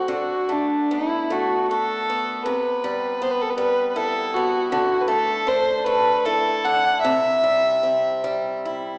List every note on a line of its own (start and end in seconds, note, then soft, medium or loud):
0.00 0.48 A3 soft
0.00 0.16 C4 soft
0.00 0.11 F#4 medium
0.00 1.70 F#4 soft
0.08 2.43 D3 medium
0.12 0.54 F#4 medium
0.49 1.28 A3 soft
0.49 0.95 D4 medium
0.91 2.09 B3 soft
0.91 1.34 E4 medium
1.30 2.52 A3 soft
1.30 1.69 F#4 medium
1.70 2.53 F#4 soft
1.70 2.41 A4 medium
2.10 3.21 B3 soft
2.45 4.72 C3 medium
2.45 3.24 B4 medium
2.84 3.56 G3 soft
3.22 4.35 B3 soft
3.22 3.32 C5 medium
3.31 3.43 B4 medium
3.41 3.51 A4 medium
3.50 3.57 B4 medium
3.57 4.79 G3 medium
3.57 3.89 B4 medium
3.89 3.98 B4 medium
3.96 5.50 E4 medium
3.96 4.35 A4 medium
4.34 4.81 B3 soft
4.34 4.71 F#4 medium
4.71 7.03 D3 medium
4.71 5.03 F#4 medium
5.01 5.10 B4 medium
5.08 5.85 A3 medium
5.08 5.50 A4 medium
5.47 6.63 D4 medium
5.47 5.77 C5 medium
5.77 5.86 C5 medium
5.84 7.11 A3 medium
5.84 6.27 B4 medium
6.25 8.65 E4 medium
6.25 6.66 A4 medium
6.65 7.11 D4 medium
6.65 7.00 F#5 medium
7.01 8.98 C3 medium
7.01 8.57 E5 medium
7.44 8.23 G3 soft
7.83 8.98 C4 soft
8.24 8.98 G3 medium
8.65 8.98 E4 soft